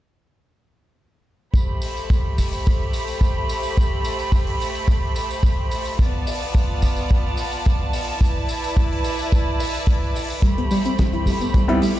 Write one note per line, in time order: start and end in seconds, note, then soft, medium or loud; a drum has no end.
1.54 5.95 A3 medium
1.54 5.95 G4 medium
1.54 5.95 C5 medium
1.54 5.95 B5 medium
1.54 kick medium
1.54 tambourine soft
1.82 open hi-hat medium
1.82 tambourine medium
1.97 tambourine soft
2.10 kick loud
2.10 tambourine soft
2.38 kick medium
2.38 open hi-hat loud
2.38 tambourine medium
2.53 tambourine soft
2.66 kick loud
2.66 tambourine soft
2.93 open hi-hat medium
2.93 tambourine medium
3.08 tambourine soft
3.21 kick loud
3.21 tambourine soft
3.49 open hi-hat medium
3.49 tambourine medium
3.63 tambourine soft
3.77 kick loud
3.77 tambourine soft
4.04 open hi-hat loud
4.04 tambourine medium
4.19 tambourine soft
4.32 kick loud
4.32 tambourine soft
4.47 open hi-hat medium
4.60 open hi-hat medium
4.60 tambourine medium
4.75 tambourine soft
4.88 kick loud
4.88 tambourine soft
5.16 open hi-hat medium
5.16 tambourine medium
5.31 tambourine soft
5.43 kick loud
5.43 tambourine soft
5.71 open hi-hat loud
5.71 tambourine medium
5.85 tambourine medium
5.99 8.19 B3 medium
5.99 8.19 F4 medium
5.99 8.19 D5 medium
5.99 10.40 A5 medium
5.99 kick loud
5.99 tambourine soft
6.27 open hi-hat loud
6.27 tambourine medium
6.41 tambourine soft
6.54 kick loud
6.54 tambourine soft
6.82 kick medium
6.82 open hi-hat medium
6.82 tambourine medium
6.96 tambourine medium
7.09 kick loud
7.09 tambourine soft
7.37 open hi-hat loud
7.37 tambourine medium
7.52 tambourine medium
7.65 kick loud
7.65 tambourine soft
7.93 open hi-hat loud
7.93 tambourine medium
8.08 tambourine soft
8.21 10.41 E4 medium
8.21 10.41 B4 medium
8.21 10.41 D5 medium
8.21 kick loud
8.21 tambourine soft
8.49 open hi-hat loud
8.49 tambourine medium
8.64 tambourine soft
8.77 kick loud
8.77 tambourine soft
8.91 open hi-hat medium
9.04 open hi-hat loud
9.04 tambourine medium
9.19 tambourine medium
9.32 kick loud
9.32 tambourine soft
9.60 open hi-hat loud
9.60 tambourine medium
9.74 tambourine medium
9.87 kick loud
9.87 tambourine soft
10.15 open hi-hat loud
10.15 tambourine medium
10.30 tambourine medium
10.42 10.49 G3 medium
10.42 12.00 A3 medium
10.42 12.00 G4 medium
10.42 12.00 C5 medium
10.42 12.00 B5 medium
10.42 kick loud
10.42 closed hi-hat medium
10.42 tambourine soft
10.58 10.61 B3 medium
10.58 closed hi-hat soft
10.71 10.80 G3 loud
10.71 open hi-hat loud
10.71 tambourine medium
10.85 10.89 C4 medium
10.85 closed hi-hat soft
10.85 tambourine soft
10.98 11.05 G3 medium
10.98 kick loud
10.98 snare loud
10.98 closed hi-hat medium
10.98 tambourine soft
11.13 11.17 E4 medium
11.13 closed hi-hat soft
11.26 11.30 G3 medium
11.26 kick soft
11.26 open hi-hat loud
11.26 tambourine medium
11.40 11.47 B3 medium
11.40 closed hi-hat soft
11.40 tambourine medium
11.54 11.58 G3 loud
11.54 kick loud
11.54 closed hi-hat medium
11.54 tambourine soft
11.68 11.78 G3 medium
11.68 11.78 B3 medium
11.68 11.78 C4 medium
11.68 11.75 C4 medium
11.68 11.78 E4 medium
11.68 closed hi-hat soft
11.82 11.91 G3 medium
11.82 open hi-hat loud
11.82 tambourine medium
11.96 closed hi-hat soft